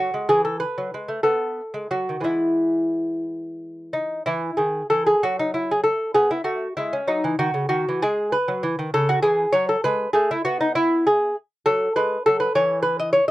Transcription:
Already playing: F#3 F#4
0.14 G#3
0.29 E3 G#4
0.45 A4
0.60 B4
0.78 F#3
0.94 G#3
1.08 A3
1.23 B3 A4
1.74 G#3
1.91 F#3 F#4
2.09 D#3
2.20 E3 G#3 B3
2.24 E4
3.93 D#4
4.26 E3 E4
4.57 D#3 G#4
4.90 E3 A4
5.06 G#4
5.23 F#3 F#4
5.39 D#4
5.54 E4
5.71 G#4
5.84 A4
6.14 B3 G#4
6.31 E4
6.44 A3 F#4
6.77 G#3 E4
6.93 C#4
7.07 F#3 D#4
7.24 E3
7.39 D#3 F#4
7.54 C#3
7.69 D#3 F#4
7.89 E3
8.02 G#3 G#4
8.32 B4
8.48 F#3
8.63 E3
8.79 D#3
8.94 C#3 A4
9.09 F#4
9.23 E3 G#4
9.52 F#3 C#5
9.69 A4
9.84 G#3 B4
10.13 A3 G#4
10.31 E4
10.45 B3 F#4
10.61 D#4
10.75 E4
11.07 G#4
11.66 F#3 A4
11.96 G#3 B4
12.26 F#3 A4
12.40 B4
12.55 E3 C#5
12.82 B4
12.99 D#5
13.13 C#5

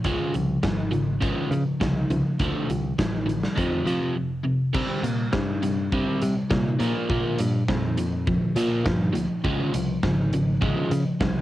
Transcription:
0.04 C#2 C#3 F3 G#3, kick, closed hi-hat
0.34 C2 C#3 F3, closed hi-hat
0.63 G#1 C#3 F3, kick, snare, closed hi-hat
0.92 C#3 F3, closed hi-hat
1.21 C#3 F3 G#3, kick, closed hi-hat
1.51 C#3 F3, closed hi-hat
1.80 C2 C#3 F3, kick, snare, closed hi-hat
2.10 C2 C#3 F3, closed hi-hat
2.39 D2 D3 F3 A3, kick, closed hi-hat
2.69 C2 D3 F3, closed hi-hat
2.98 A1 D3 F3, kick, snare, closed hi-hat
3.26 D3 F3, closed hi-hat
3.43 snare
3.55 F2 C3 F3, kick, closed hi-hat
3.85 F2 C3 F3, closed hi-hat
4.15 F2 C3
4.43 F2 C3
4.73 C3 G3 C4, kick, crash
5.03 A#2 C3 G3, closed hi-hat
5.32 G2 C3 G3, kick, snare
5.62 C3 G3, closed hi-hat
5.92 C3 G3 C4, kick
6.21 C3 G3, closed hi-hat
6.50 A#2 C3 G3, kick, snare
6.79 A#2 F3 A#3, closed hi-hat
7.09 A#2 F3 A#3, kick
7.39 G2 A#2 F3, closed hi-hat
7.69 F2 A#2 F3, kick, snare
7.97 A#2 F3, closed hi-hat
8.27 A#2 F3, kick
8.56 A#2 F3 A#3, closed hi-hat
8.85 G2 A#2 F3, kick, snare
9.13 D2 A#2 F3, closed hi-hat
9.44 C#2 C#3 F3 G#3, kick
9.73 C2 C#3 F3, closed hi-hat
10.03 G#1 C#3 F3, kick, snare
10.33 C#3 F3, closed hi-hat
10.61 C#3 F3 G#3, kick
10.91 C#3 F3, closed hi-hat
11.20 C2 C#3 F3, kick, snare

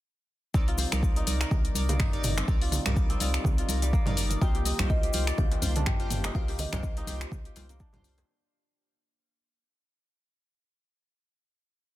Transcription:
0.54 C2 C3 G3 C4 D#4 A#4 D5, kick, cabasa
0.68 F4, closed hi-hat
0.78 C5, open hi-hat, muted conga, cabasa
0.92 C2 D#4 A#4 D5, finger snap, closed hi-hat, high conga, cabasa
1.03 kick, cabasa
1.16 D#4, closed hi-hat, muted conga
1.27 C2 D#4 A#4 D5, open hi-hat, high conga, cabasa
1.41 A#4, finger snap, closed hi-hat, cabasa
1.51 C2, kick, muted conga, low conga, cabasa
1.65 closed hi-hat
1.75 C2 D#4 A#4 D5, open hi-hat, high conga, cabasa
1.89 A#3, closed hi-hat, muted conga, high conga, low conga, cabasa
1.99 D#4, finger snap, kick, mid tom, cabasa
2.13 G1 D#4 A#4 D5, closed hi-hat
2.24 mid tom, open hi-hat, low conga, cabasa
2.37 C4, finger snap, closed hi-hat, muted conga, cabasa
2.48 C2 D#4 A#4 D5, kick, cabasa
2.62 F4, open hi-hat
2.72 open hi-hat, muted conga, low conga, cabasa
2.86 C2 G3 D#4 A#4 D5, finger snap, closed hi-hat, mid tom, high conga, cabasa
2.96 kick, cabasa
3.10 C4, closed hi-hat, muted conga
3.20 C2 D#4 F4 A#4 D5, open hi-hat, high conga, cabasa
3.34 finger snap, closed hi-hat, cabasa
3.44 C2, kick, muted conga, low conga, cabasa
3.58 F4, closed hi-hat
3.69 C2 D#4 A#4 D5, open hi-hat, high conga, cabasa
3.82 G3, closed hi-hat, muted conga, cabasa
3.93 A#3, kick, cabasa
4.06 G1 D#4 A#4 D5, closed hi-hat, mid tom, high conga, low conga
4.17 open hi-hat, cabasa
4.30 closed hi-hat, muted conga, cabasa
4.41 C2 D#3 A#3 D#4 F4 G4 C5 G5, kick, djembe tone, cabasa
4.55 G4, closed hi-hat
4.65 D#5, open hi-hat, muted conga, cabasa
4.79 C2 F4 G4 C5, finger snap, closed hi-hat, high conga, djembe tone, djembe bass, cabasa
4.90 D#5, kick, cabasa
5.03 G4, closed hi-hat, muted conga
5.13 C2 F4 G4 C5, open hi-hat, high conga, cabasa
5.27 D5, finger snap, closed hi-hat, cabasa
5.38 C2 F5, kick, muted conga, djembe tone, low conga, cabasa
5.52 closed hi-hat, djembe slap
5.62 C2 F4 G4 C5, open hi-hat, high conga, djembe tone, djembe bass, cabasa
5.76 D4, closed hi-hat, muted conga, high conga, low conga, cabasa
5.86 G4 G5, finger snap, kick, mid tom, cabasa
6.00 G1 F4 G4 C5, closed hi-hat
6.10 mid tom, open hi-hat, low conga, cabasa
6.24 D#4, finger snap, closed hi-hat, muted conga, djembe slap, cabasa
6.35 C2 F4 G4 C5 F5, kick, djembe tone, cabasa
6.48 G4, open hi-hat
6.59 D#5, open hi-hat, muted conga, low conga, cabasa
6.73 C2 A#3 F4 G4 C5, finger snap, closed hi-hat, mid tom, djembe slap, high conga, djembe tone, djembe bass, cabasa
6.83 kick, cabasa
6.97 D#4, closed hi-hat, muted conga
7.07 C2 F4 G4 C5, open hi-hat, high conga, djembe tone, cabasa
7.21 finger snap, closed hi-hat, cabasa
7.31 C2, kick, muted conga, low conga, cabasa
7.45 G4, closed hi-hat
7.56 C2 F4 G4 C5, open hi-hat, djembe slap, high conga, cabasa
7.69 A#3, closed hi-hat, muted conga, djembe tone, cabasa
7.80 D4, kick, cabasa
7.93 C2 F4 G4 C5, closed hi-hat, mid tom, djembe slap, high conga, low conga
8.04 open hi-hat, cabasa
8.18 closed hi-hat, muted conga, djembe slap, cabasa

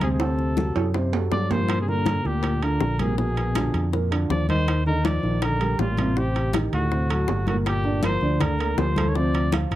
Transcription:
Already playing: D2
0.01 C3 C4 G#4 C5, high conga, high timbale
0.13 C3 G#4
0.20 C3 C4 A4 C5, high bongo, high conga, high timbale
0.39 high bongo, high conga
0.57 F#3 F#4 A4, high bongo, high conga
0.76 F#2, high bongo, high conga, high timbale
0.94 C3 C4 C5, high bongo, high conga, low timbale
1.13 F#3 F#4 A4, high bongo, high conga, low timbale
1.32 G2 F#3 D5, high bongo, low bongo, high conga, low timbale
1.51 A#2 F3 A#3 A#4 C5, high conga, low timbale
1.69 high bongo, high conga, high timbale
1.81 C3 G#4
1.88 A#2 D3 A#3 A#4, high conga
2.06 high bongo, high conga, high timbale
2.25 D2 A#2 A#3 G4 A#4, high conga
2.43 high bongo, high conga, high timbale
2.62 D3 D4 F4 A#4, high conga, high timbale
2.81 A#1, high bongo, low bongo, high conga
2.99 A#2 C3 A#3 G#4 A#4, high conga, high timbale
3.18 B2 A#3 G#4 A#4, high bongo, high conga
3.37 high bongo, high conga, high timbale
3.55 D3 D4 F4, high bongo, high conga, high timbale
3.74 F2, high bongo, high conga, high timbale
3.93 A#2 A#3 A#4, high bongo, high conga
4.11 D3 D4 F4, high bongo, high conga, high timbale
4.30 D#2 F3 D5, high bongo, low bongo, high conga
4.48 D#3 D#4 C5 D#5, high conga, high timbale
4.68 high bongo, high conga, high timbale
4.86 D3 D#3 D#4 A#4 D#5, high conga
5.05 F3 D5, high bongo, high conga, high timbale
5.23 A#1 D#3 D#4 D#5, high conga
5.42 D3 A#4, high bongo, high conga, high timbale
5.60 G3 G4 A#4, high conga, high timbale
5.79 A1 A#2 F4, high bongo, low bongo, low timbale
5.97 C3 C4 C5, high conga, high timbale
6.17 C3 C4 G4 C5, high bongo
6.35 high bongo, high conga, high timbale
6.53 D#3 D#4 G4, high bongo, high conga, high timbale
6.72 D2 A2 F#4, high bongo, high conga, high timbale
6.91 C3 C4 C5, high bongo, high conga
7.09 F#3 F#4 A4, high bongo, high conga, high timbale
7.28 G1, high bongo, low bongo, high conga, low timbale
7.47 A2 A#2 A#3 F#4 A#4, high conga, high timbale
7.65 A#2 G4, high bongo, high conga, high timbale
7.84 D3 D4 D5, high conga
8.03 F3 A#3 A#4 C5 A#5, high bongo, high conga, high timbale
8.21 D2 D3 D4 D5, high conga
8.40 D3 A#4, high bongo, high conga, low conga, high timbale
8.59 A#3 A#4 A#5, high conga, high timbale
8.78 D2 F3 C5, high bongo, low bongo, high conga, low timbale
8.96 A3 A4 A5, high conga, high timbale
9.09 D#3 C#5
9.15 C3 F3 C4 C5 D5, high bongo, high conga
9.34 high bongo, high conga, high timbale
9.52 F3 F4 F5, high bongo, high conga, high timbale
9.71 G1, high bongo, high conga, high timbale

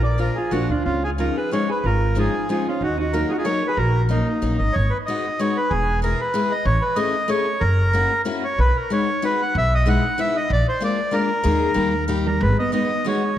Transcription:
Already playing: A#1
0.03 A#4 D5
0.18 F3 A#3 D4 F4 A#4
0.35 F4 G#4
0.51 A#1 F3 A#3 D4 F4 F#4
0.69 D2 D4 F4
0.85 C#2 C#4 F4
1.04 F4 G#4
1.18 F3 G#3 C#4 D#4 F4 A#4
1.37 G#4 B4
1.51 F3 G#3 C#4 D#4 G#4 C#5
1.70 G#4 B4
1.84 G#1 F4 A#4
2.15 F3 G#3 C#4 D#4 F4
2.19 G#4
2.49 F3 G#3 C#4 D#4 F4 G#4
2.68 C#4 F4
2.81 D#2 D#4 F#4
2.98 D#4 F#4
3.13 F#3 A#3 C#4 D#4 F#4 A#4
3.29 D#4 F4 F#4 G#4
3.38 F4 G#4
3.45 F#3 A#3 C#4 D#4 A#4 C#5
3.67 G#4 B4
3.77 A#1 F#4 A#4
4.09 F#3 A#3 C#4 D#4
4.42 A#1 F#3 A#3 C#4 D#4
4.58 G#1 D#5
4.73 G#1 C#5
4.90 B4
5.06 G#3 B3 D#4 F#4 D#5
5.39 G#3 B3 D#4 F#4 C#5
5.57 B4
5.70 E1 G#4
6.02 G#3 B3 E4 G#4 A#4
6.21 B4
6.34 G#3 B3 E4 G#4
6.51 D#5
6.65 A1 C#5
6.81 B4
6.96 A3 C#4 E4 G#4 D#5
7.28 A3 C#4 E4 G#4 C#5
7.61 F#1 A#4
7.93 A#3 C#4 E4 F#4
8.25 A#3 C#4 E4 F#4
8.44 C#5
8.58 B1 B4
8.76 A#4
8.90 G#3 B3 D#4 F#4 C#5
9.22 G#3 B3 D#4 F#4 B4
9.42 F#5
9.55 B1 E5
9.75 D#5
9.86 G#3 B3 D#4 E4 F#5
10.18 G#3 B3 D#4 E4 E5
10.37 D#5
10.50 A#1 D5
10.69 C5
10.80 G#3 A#3 D4 F4 D5
11.11 G#3 A#3 D4 F4 A#4
11.44 D#2 G#3 A#3 D#4 G#4
11.74 D#2 G3 A#3 D#4 G4
12.08 G3 A#3 D#4 G4
12.27 G3 A#4
12.41 G#1 G#3 B4
12.59 B3 D#5
12.72 G#3 B3 D#4 F#4 D#5
13.05 G#3 B3 D#4 F#4 C#5

